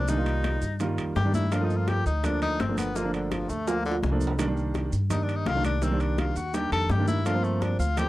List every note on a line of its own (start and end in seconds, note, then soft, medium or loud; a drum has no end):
0.00 0.56 C2 medium
0.00 0.11 D4 medium
0.08 0.15 D#3 medium
0.08 0.15 G3 medium
0.08 0.15 A#3 medium
0.08 0.15 D4 medium
0.08 0.81 D#4 medium
0.08 high bongo medium
0.08 high conga soft
0.08 maracas medium
0.17 0.61 D#3 medium
0.17 0.61 G3 medium
0.17 0.62 A#3 medium
0.17 0.62 F4 medium
0.26 high conga soft
0.26 high timbale medium
0.26 maracas soft
0.44 high bongo medium
0.44 high conga medium
0.44 high timbale medium
0.44 maracas soft
0.62 0.96 G2 medium
0.62 high bongo soft
0.62 maracas medium
0.80 1.12 D#3 medium
0.80 1.12 G3 medium
0.80 1.12 A#3 medium
0.80 1.12 F4 medium
0.80 high bongo medium
0.80 high conga soft
0.80 high timbale medium
0.80 maracas medium
0.98 1.15 F2 medium
0.98 high bongo soft
0.98 high conga soft
0.98 high timbale medium
0.98 maracas soft
1.16 2.00 G2 loud
1.16 1.33 G4 medium
1.16 high bongo medium
1.16 low bongo medium
1.16 high conga medium
1.16 low timbale medium
1.16 maracas soft
1.25 1.44 D#3 medium
1.25 1.44 G3 medium
1.25 1.44 A#3 medium
1.25 1.44 D4 medium
1.34 1.54 E4 medium
1.34 high bongo soft
1.34 high conga medium
1.34 maracas medium
1.52 1.58 F3 medium
1.52 1.58 A3 medium
1.52 1.58 A#3 medium
1.52 1.59 D4 medium
1.52 1.66 F4 medium
1.52 high bongo medium
1.52 high conga soft
1.52 high timbale medium
1.52 maracas medium
1.61 2.05 F3 medium
1.61 2.05 A3 medium
1.61 2.05 A#3 medium
1.61 1.78 D#4 medium
1.61 2.05 F4 medium
1.70 high conga soft
1.70 maracas soft
1.77 1.90 F4 medium
1.88 2.06 G4 medium
1.88 high bongo medium
1.88 high conga medium
1.88 high timbale medium
1.88 maracas soft
2.06 2.56 D2 medium
2.06 2.26 D#4 medium
2.06 maracas medium
2.23 2.55 F3 medium
2.23 2.55 A3 medium
2.23 2.55 A#3 medium
2.23 2.55 D4 medium
2.23 2.42 D4 medium
2.23 high bongo medium
2.23 high conga soft
2.23 low conga medium
2.23 high timbale medium
2.23 maracas medium
2.42 2.62 D#4 loud
2.42 high conga soft
2.42 low conga medium
2.42 high timbale medium
2.42 maracas soft
2.60 3.44 G1 medium
2.60 2.77 C4 medium
2.60 high bongo medium
2.60 low bongo medium
2.60 high conga medium
2.60 high timbale medium
2.60 maracas soft
2.68 2.87 F3 medium
2.68 2.87 A3 medium
2.68 2.88 A#3 medium
2.68 2.88 D4 medium
2.78 2.97 B3 medium
2.78 high conga medium
2.78 high timbale medium
2.78 maracas medium
2.95 3.02 F3 medium
2.95 3.02 A3 medium
2.95 3.02 A#3 medium
2.95 3.13 A#3 medium
2.95 3.02 F4 medium
2.95 high bongo medium
2.95 high conga soft
2.95 maracas medium
3.04 3.48 F3 medium
3.04 3.48 A3 medium
3.04 3.49 A#3 medium
3.04 3.49 D4 medium
3.13 3.33 D3 medium
3.13 high conga soft
3.13 high timbale medium
3.13 maracas soft
3.31 3.51 F3 medium
3.31 high bongo medium
3.31 high conga medium
3.31 high timbale medium
3.31 maracas soft
3.49 3.99 D2 medium
3.49 3.69 A3 medium
3.49 high bongo soft
3.49 maracas medium
3.67 3.99 F3 medium
3.67 3.99 A3 medium
3.67 3.99 A#3 medium
3.67 3.85 A#3 medium
3.67 3.99 F4 medium
3.67 high bongo medium
3.67 high conga soft
3.67 high timbale medium
3.67 maracas medium
3.85 3.96 D3 medium
3.85 high bongo soft
3.85 high conga soft
3.85 maracas soft
3.92 high timbale medium
4.03 4.87 C2 medium
4.03 high bongo medium
4.03 low bongo medium
4.03 high conga medium
4.03 maracas soft
4.11 4.31 F3 medium
4.11 4.31 A3 medium
4.11 4.31 A#3 medium
4.11 4.31 D4 medium
4.21 high bongo soft
4.21 high conga medium
4.21 maracas medium
4.27 low timbale medium
4.39 4.45 D#3 loud
4.39 4.45 G3 medium
4.39 4.45 A#3 medium
4.39 4.45 D4 loud
4.39 high bongo medium
4.39 high timbale loud
4.39 maracas medium
4.47 4.92 D#3 medium
4.47 4.92 G3 medium
4.47 4.92 A#3 medium
4.47 4.92 D4 medium
4.56 high conga soft
4.56 maracas soft
4.74 high bongo medium
4.74 high conga medium
4.74 high timbale medium
4.74 maracas soft
4.92 5.43 G2 medium
4.92 high conga soft
4.92 maracas medium
5.10 5.42 D#3 medium
5.10 5.42 G3 medium
5.10 5.42 A#3 medium
5.10 5.42 D4 medium
5.10 5.24 D#4 medium
5.10 high bongo medium
5.10 high conga soft
5.10 low conga medium
5.10 high timbale medium
5.10 maracas medium
5.23 5.37 D4 medium
5.28 high conga soft
5.28 high timbale medium
5.28 maracas soft
5.35 5.49 D#4 medium
5.46 6.30 C2 medium
5.46 5.64 F4 loud
5.46 high bongo medium
5.46 low bongo medium
5.46 high conga medium
5.46 high timbale medium
5.46 low timbale medium
5.46 maracas soft
5.55 5.74 D#3 medium
5.55 5.74 G3 medium
5.55 5.74 A#3 medium
5.55 5.75 D4 medium
5.64 5.84 D4 loud
5.64 high conga medium
5.64 high timbale medium
5.64 maracas medium
5.82 5.89 D#3 medium
5.82 5.89 G3 medium
5.82 5.89 A#3 medium
5.82 5.89 C4 medium
5.82 6.02 C4 medium
5.82 high bongo medium
5.82 maracas medium
5.91 6.35 D#3 medium
5.91 6.35 G3 medium
5.91 6.35 A#3 medium
5.91 6.36 D4 medium
6.00 6.21 D4 medium
6.00 high timbale medium
6.00 maracas soft
6.18 6.38 F4 medium
6.18 high bongo medium
6.18 high conga medium
6.18 high timbale medium
6.18 maracas soft
6.36 6.69 D#2 medium
6.36 6.56 F#4 medium
6.36 high bongo soft
6.36 maracas medium
6.53 6.85 D#3 medium
6.53 6.85 G3 medium
6.53 6.86 A#3 medium
6.53 6.86 D4 medium
6.53 6.72 G4 medium
6.53 high bongo medium
6.53 high conga soft
6.53 high timbale medium
6.53 maracas medium
6.72 6.89 F2 medium
6.72 6.92 A4 loud
6.72 high bongo soft
6.72 high conga soft
6.72 high timbale medium
6.72 maracas soft
6.89 7.74 G2 loud
6.89 7.07 G4 loud
6.89 high bongo medium
6.89 low bongo medium
6.89 high conga medium
6.89 low timbale medium
6.89 maracas soft
6.99 7.18 D#3 medium
6.99 7.18 G3 medium
6.99 7.18 A#3 medium
6.99 7.18 D4 medium
7.08 7.28 E4 loud
7.08 high bongo soft
7.08 high conga medium
7.08 maracas medium
7.26 7.32 F3 medium
7.26 7.32 A3 medium
7.26 7.32 A#3 medium
7.26 7.32 D4 medium
7.26 7.46 F4 loud
7.26 high bongo medium
7.26 high conga soft
7.26 high timbale loud
7.26 maracas medium
7.34 7.79 F3 medium
7.34 7.79 A3 medium
7.34 7.79 A#3 medium
7.34 7.79 C4 medium
7.44 7.63 A3 medium
7.44 maracas soft
7.62 7.79 D4 medium
7.62 high bongo medium
7.62 high conga medium
7.62 high timbale medium
7.62 maracas soft
7.79 8.09 D2 medium
7.79 8.00 F4 medium
7.79 high conga soft
7.79 maracas medium
7.97 8.09 F3 medium
7.97 8.09 A3 medium
7.97 8.09 A#3 medium
7.97 8.09 C4 medium
7.97 8.09 G4 loud
7.97 high bongo medium
7.97 high conga soft
7.97 low conga medium
7.97 high timbale medium
7.97 maracas medium